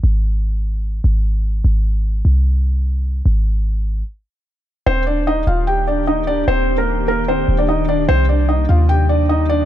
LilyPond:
<<
  \new Staff \with { instrumentName = "Felt piano" } { \time 4/4 \key ees \major \tempo 4 = 149 r1 | r1 | r1 | <c' c''>8 <d' d''>8 <ees' ees''>8 <f' f''>8 <g' g''>8 <d' d''>8 <ees' ees''>8 <d' d''>8 |
<c' c''>8. <bes bes'>8. <bes bes'>8 <c' c''>8. <d' d''>16 <ees' ees''>8 <d' d''>8 | <c' c''>8 <d' d''>8 <ees' ees''>8 <f' f''>8 <g' g''>8 <d' d''>8 <ees' ees''>8 <d' d''>8 | }
  \new Staff \with { instrumentName = "Ambient pad" } { \time 4/4 \key ees \major << { r1 | r1 | r1 | <ees bes g'>1~ |
<ees bes g'>1 | <c g ees'>1 | } \\ { r1 | r1 | r1 | d'1~ |
d'1~ | d'1 | } >> }
  \new Staff \with { instrumentName = "808-style bass" } { \clef bass \time 4/4 \key ees \major aes,,2~ aes,,8 aes,,4. | aes,,4. c,2~ c,8 | aes,,2 r2 | ees,,4. ees,,2~ ees,,8 |
ees,,2~ ees,,8 ees,,4. | c,4. ees,2~ ees,8 | }
>>